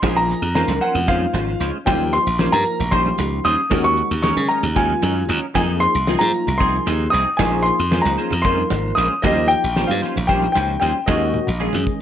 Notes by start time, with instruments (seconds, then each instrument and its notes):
Already playing: grand piano C6
0.02 slap bass A#1, tine electric piano F3 A#3 D#4 G#4, clean electric guitar G#3 C#4 F4 C5, kick, closed hi-hat, muted conga, high conga, low conga
0.17 grand piano A#5
0.30 snare, closed hi-hat
0.42 slap bass F2
0.54 tine electric piano F3 A#3 D#4 A#4, clean electric guitar G#3 C#4 F4 C5, grand piano A#5, snare, closed hi-hat
0.68 slap bass C#2, muted conga, high conga, low conga
0.81 clean electric guitar C#4 F4 C5, grand piano F#5, closed hi-hat, low conga
0.95 slap bass F2, low conga
1.07 tine electric piano F3 A#3 D#4 F4, clean electric guitar G#3 C#4 F4 C5, grand piano F5, kick, snare, closed hi-hat
1.21 high conga
1.33 slap bass G#1, clean electric guitar C#4 F4 C5, closed hi-hat, muted conga, low conga
1.60 slap bass C#2, clean electric guitar G#3 C#4 F4 C5, closed hi-hat
1.75 low conga
1.86 slap bass D#2, tine electric piano F3 A#3 D#4 G4, clean electric guitar G3 C#4 F4 C5, grand piano G5, kick, closed hi-hat, muted conga, high conga, low conga
2.13 grand piano C6, snare, closed hi-hat
2.27 slap bass A#1
2.39 tine electric piano F3 A#3 D#4 A#4, clean electric guitar G3 C#4 F4 C5, snare, closed hi-hat
2.52 slap bass G2, grand piano A#5, muted conga, high conga, low conga
2.66 closed hi-hat, low conga
2.80 slap bass A#1, low conga
2.91 tine electric piano F3 A#3 D#4 G4, clean electric guitar G3 C#4 F4 C5, grand piano C6, kick, closed hi-hat
3.06 high conga, low conga
3.18 slap bass C#2, closed hi-hat, muted conga, low conga
3.44 slap bass D#2, clean electric guitar G3 C#4 F4 C5, grand piano D#6, closed hi-hat
3.58 low conga
3.70 slap bass D#2, tine electric piano D#3 G#3 C#4 F#4, clean electric guitar F#3 C#4 D#4 A#4, kick, closed hi-hat, muted conga, high conga, low conga
3.84 grand piano C#6
3.97 closed hi-hat
4.11 slap bass D#2
4.22 tine electric piano D#3 G#3 C#4 G#4, clean electric guitar F#3 C#4 D#4 A#4, grand piano C#6, snare, closed hi-hat, low conga
4.37 slap bass C#3, muted conga, high conga, low conga
4.49 clean electric guitar C#4 D#4 A#4, grand piano A#5, closed hi-hat
4.63 slap bass D#2, low conga
4.75 tine electric piano D#3 G#3 C#4 F4, clean electric guitar F#3 C#4 D#4 A#4, grand piano G#5, kick, closed hi-hat
4.90 high conga
5.02 slap bass F#2, clean electric guitar C#4 D#4 A#4, closed hi-hat, muted conga, low conga
5.29 slap bass D#2, clean electric guitar F#3 C#4 D#4 A#4, closed hi-hat
5.43 low conga
5.54 slap bass F2, tine electric piano F3 A#3 D#4 G#4, clean electric guitar C4 D#4 G#4, grand piano G#5, kick, closed hi-hat, muted conga, high conga, low conga
5.80 grand piano C6, closed hi-hat
5.95 slap bass C2
6.07 tine electric piano F3 A#3 D#4 F4, clean electric guitar C4 D#4 G#4, snare, closed hi-hat
6.19 slap bass G#2, grand piano A#5, muted conga, high conga, low conga
6.34 closed hi-hat, low conga
6.47 slap bass C2, low conga
6.58 tine electric piano F3 A#3 D#4 G#4, clean electric guitar C4 D#4 G#4, grand piano C6, kick, closed hi-hat
6.74 low conga
6.86 slap bass D#2, clean electric guitar D#4 G#4, snare, closed hi-hat, muted conga, low conga
7.10 slap bass C2, clean electric guitar C4 D#4 G#4, grand piano D#6, closed hi-hat
7.27 low conga
7.37 slap bass A#1, tine electric piano F3 A#3 D#4 G#4, clean electric guitar G#3 C#4 F4 C5, grand piano G#5, kick, closed hi-hat, muted conga, high conga, low conga
7.62 grand piano C6, closed hi-hat, low conga
7.79 slap bass F2
7.91 tine electric piano F3 A#3 D#4 G#4, clean electric guitar G#3 C#4 F4 C5, snare, closed hi-hat
8.02 slap bass C#2, grand piano A#5, muted conga, high conga, low conga
8.18 clean electric guitar C#4 F4 C5, closed hi-hat, low conga
8.31 slap bass F2, low conga
8.42 tine electric piano F3 A#3 D#4 A#4, clean electric guitar G#3 C#4 F4 C5, grand piano C6, kick, closed hi-hat
8.57 high conga, low conga
8.70 slap bass G#1, snare, closed hi-hat, muted conga, low conga
8.95 slap bass A#1, clean electric guitar G#3 C#4 F4 C5, grand piano D#6, closed hi-hat
9.10 low conga
9.22 slap bass D#2, tine electric piano F3 A#3 D#4 G4, clean electric guitar G3 C#4 F4 C5, grand piano D#5, kick, closed hi-hat, muted conga, high conga, low conga
9.48 grand piano G5, closed hi-hat, low conga
9.64 slap bass A#1
9.76 tine electric piano F3 A#3 D#4 G4, clean electric guitar G3 C#4 F4 C5, snare, closed hi-hat
9.87 slap bass G2, grand piano F5, muted conga, high conga, low conga
10.02 clean electric guitar C#4 F4 C5, snare, closed hi-hat, low conga
10.16 slap bass A#1, low conga
10.27 tine electric piano F3 A#3 D#4 G4, clean electric guitar G3 C#4 F4 C5, grand piano G5, kick, snare, closed hi-hat
10.42 high conga, low conga
10.52 clean electric guitar C#4 F4 C5, grand piano G5, closed hi-hat, muted conga, low conga
10.56 slap bass C#2
10.80 slap bass D#2, clean electric guitar G3 C#4 F4 C5, grand piano G5, closed hi-hat
10.95 low conga
11.06 slap bass D#2, tine electric piano D#3 G#3 C#4 F#4, clean electric guitar F#3 C#4 F4 G#4, grand piano D#5, kick, closed hi-hat, muted conga, high conga, low conga
11.34 high tom, low conga
11.47 slap bass A#1, high tom, low conga
11.59 tine electric piano D#3 G#3 C#4 G#4, clean electric guitar F#3 C#4 F4 G#4, low conga
11.73 slap bass F#2, snare, muted conga, high conga, low conga
11.87 kick